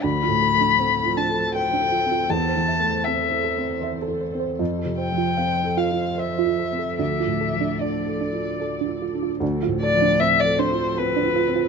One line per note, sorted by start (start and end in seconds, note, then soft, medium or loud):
0.02 2.26 D2 medium
0.02 2.30 F3 medium
0.02 0.15 D4 medium
0.02 4.58 A4 medium
0.02 4.58 C5 medium
0.02 1.19 B5 loud
0.23 0.34 F4 medium
0.28 0.69 A2 soft
0.42 0.53 A4 medium
0.54 0.94 A3 soft
0.61 0.72 D4 medium
0.79 1.19 C4 soft
0.79 0.91 C5 medium
1.03 1.44 F4 soft
1.17 1.29 D4 medium
1.17 1.54 A5 medium
1.29 1.70 A4 soft
1.55 1.66 A4 medium
1.55 1.95 C5 medium
1.55 2.31 G5 medium
1.73 1.85 D4 medium
1.81 2.21 A4 soft
1.92 2.03 F4 soft
2.05 2.30 C4 soft
2.12 2.23 F4 medium
2.29 4.55 E2 medium
2.29 4.60 E3 medium
2.29 2.42 A4 medium
2.29 3.06 A5 medium
2.49 2.61 C5 medium
2.55 2.96 E3 soft
2.68 2.80 E5 medium
2.79 3.21 A3 soft
2.87 2.99 A4 medium
3.04 3.47 C4 soft
3.04 3.82 E5 medium
3.04 3.18 A5 medium
3.32 3.72 A4 soft
3.44 3.56 A4 medium
3.57 3.98 C4 medium
3.81 4.23 C5 medium
3.81 3.95 E5 medium
4.02 4.14 A4 medium
4.08 4.49 A4 soft
4.21 4.33 C5 medium
4.34 4.60 C4 soft
4.40 4.52 C5 medium
4.59 6.95 F2 medium
4.59 9.41 F3 medium
4.59 4.71 F4 medium
4.59 9.37 A4 soft
4.59 6.95 C5 medium
4.79 4.91 A4 medium
4.85 5.27 C3 soft
4.98 5.10 C5 medium
4.98 5.79 G5 medium
5.12 5.54 F3 soft
5.18 5.30 F4 medium
5.37 5.80 C4 soft
5.37 5.49 F5 soft
5.64 6.07 A4 soft
5.77 5.90 F4 medium
5.77 6.20 F5 medium
5.91 6.34 F4 soft
6.18 6.61 C5 soft
6.18 6.30 C5 medium
6.18 6.99 E5 medium
6.39 6.51 F4 medium
6.44 6.88 F4 soft
6.59 6.71 A4 soft
6.72 6.99 C4 soft
6.79 6.91 A4 medium
6.98 9.37 D2 soft
6.98 7.11 D4 medium
6.98 9.42 D5 soft
6.98 7.83 E5 medium
7.20 7.32 F4 medium
7.25 7.69 A2 soft
7.41 7.53 A4 medium
7.52 7.96 F3 soft
7.61 7.73 D4 medium
7.79 8.23 D4 soft
7.79 7.93 D5 medium
7.79 9.02 D5 soft
8.06 8.49 A4 soft
8.21 8.33 D4 medium
8.32 8.76 F4 soft
8.60 8.73 A4 medium
8.60 9.03 D5 soft
8.81 8.93 D4 medium
8.86 9.30 F4 soft
9.02 9.14 F4 soft
9.14 9.41 D4 soft
9.23 9.34 F4 medium
9.40 11.68 D2 medium
9.40 11.68 F3 medium
9.40 11.68 C4 medium
9.40 9.54 D4 medium
9.40 11.68 A4 medium
9.63 9.74 F4 medium
9.67 10.09 A2 soft
9.81 9.94 A4 medium
9.81 10.21 D5 medium
9.95 10.35 F3 soft
10.02 10.13 D4 medium
10.20 10.61 C4 medium
10.20 10.32 C5 medium
10.20 10.41 E5 loud
10.40 10.61 D5 medium
10.45 10.86 A4 medium
10.59 10.70 D4 medium
10.59 10.99 C5 medium
10.72 11.12 F4 medium
10.97 11.38 C4 medium
10.97 11.08 A4 medium
10.97 11.68 B4 medium
11.16 11.28 D4 loud
11.23 11.63 F4 medium
11.36 11.47 F4 medium
11.48 11.68 C4 medium
11.56 11.66 F4 medium